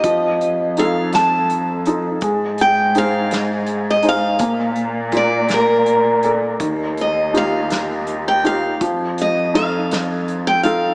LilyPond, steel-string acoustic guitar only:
\new Staff \with { instrumentName = "Steel-string acoustic guitar" } { \time 6/8 \key f \mixolydian \tempo 4. = 55 ees''4 f''8 a''4 r8 | r8 g''8 f''4~ f''16 ees''16 f''8~ | f''4 d''8 bes'4 r8 | r8 ees''8 f''4~ f''16 g''16 f''8 |
r8 ees''8 f''4~ f''16 g''16 f''8 | }